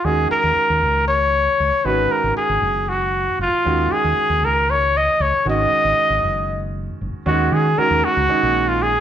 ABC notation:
X:1
M:7/8
L:1/16
Q:1/4=116
K:Ebm
V:1 name="Trumpet"
A2 B6 d6 | c2 B2 A4 G4 F2- | F2 A4 B2 d2 e2 d2 | e8- e2 z4 |
G2 A2 B2 G4- G F A2 |]
V:2 name="Grand piano"
[E,A,DG]12- [E,A,DG]2 | [E,A,DG]12- [E,A,DG]2 | [E,A,DG]12- [E,A,DG]2 | [E,A,DG]12- [E,A,DG]2 |
[E,A,DG]4 [E,A,DG]4 [E,A,DE]4 z2 |]
V:3 name="Fingered electric bass" clef=bass
E,,2 z E,, z E,, D,,6 D,, z | A,,,2 z A,,, z A,,, G,,,6 G,,, z | E,,2 z E,, z E,, D,,6 D,, z | A,,,2 z A,,, z A,,, G,,,6 G,,, z |
E,,2 E,2 z E,, z D,, z B,,,4- B,,, |]